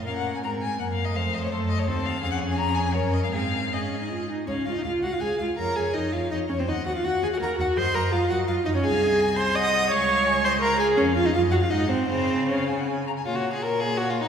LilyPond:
<<
  \new Staff \with { instrumentName = "Violin" } { \time 3/4 \key f \phrygian \tempo 4 = 165 f''16 ges''8 aes''16 bes''8 aes''8 \tuplet 3/2 { ges''8 f''8 ees''8 } | f''8 ees''16 des''16 c''8 ees''16 des''16 c''8 f''8 | \key des \major f''16 ges''8 aes''16 bes''8 aes''8 des''8 ees''16 f''16 | f''4 ees''4. r8 |
f''8 f''8 f''8 f''8 f''8 f''8 | des''8 des''8 des''8 des''8 des''8 des''8 | ges''8 ges''8 ges''8 ges''8 ges''8 ges''8 | ees''8 ees''8 ees''8 ees''8 ees''8 ees''8 |
f''8 ees''8 aes''4 ges''4 | f''8 f''8 aes''8 ees''8 f''4 | f''4 ees''8 f''8 ges''4 | f''4 f''8 aes''16 ges''16 aes''8 bes''16 aes''16 |
\key bes \minor des''4 des''2 | }
  \new Staff \with { instrumentName = "Violin" } { \time 3/4 \key f \phrygian bes'4 bes'4 bes'4 | c''4 a'4 a'4 | \key des \major aes'2 bes'4 | aes'4 aes'4. r8 |
des''8 f''16 ees''16 f''8 ges''16 f''16 aes''8 f''8 | bes''8 aes''8 ees''8 f''8 ees''8 des''16 c''16 | ees''8 ges''16 f''16 ges''8 aes''16 ges''16 bes''8 ges''8 | c'''8 bes''8 f''8 ges''8 f''8 ees''16 des''16 |
aes''4. c'''8 ees'''4 | des'''4. c'''8 bes''8 aes''8 | des''8 f''16 ees''16 f''8 ges''16 f''16 ees''8 c''8 | c''4 des''4 r4 |
\key bes \minor f'16 ges'8 aes'16 bes'8 aes'8 \tuplet 3/2 { ges'8 f'8 ees'8 } | }
  \new Staff \with { instrumentName = "Viola" } { \time 3/4 \key f \phrygian des'4 c'4 bes4 | a2 c'4 | \key des \major des'2 des'4 | c'4 c'16 des'8 ees'16 f'8 ees'8 |
des'8 f'16 ees'16 f'8 ges'16 f'16 aes'8 f'8 | bes'8 aes'8 ees'8 f'8 ees'8 des'16 c'16 | ees'8 ges'16 f'16 ges'8 aes'16 ges'16 bes'8 ges'8 | c''8 bes'8 f'8 ges'8 f'8 ees'16 des'16 |
aes'4. c''8 ees''4 | des''4. c''8 bes'8 aes'8 | des'8 f'16 ees'16 f'8 ges'16 f'16 ees'8 c'8 | c'4 des'4 r4 |
\key bes \minor bes4 bes2 | }
  \new Staff \with { instrumentName = "Cello" } { \clef bass \time 3/4 \key f \phrygian bes,4 aes,4 ges,4 | f,4 ges,4 ees,4 | \key des \major f,2 ges,4 | aes,2~ aes,8 r8 |
des,8 des,8 des,8 des,8 des,8 des,8 | f,8 f,8 f,8 f,8 f,8 f,8 | ees,8 ees,8 ees,8 ees,8 ees,8 ees,8 | ges,8 ges,8 ges,8 ges,8 ges,8 ges,8 |
c,2. | des,2. | f,4 ges,4 aes,4 | des2~ des8 r8 |
\key bes \minor bes,2. | }
>>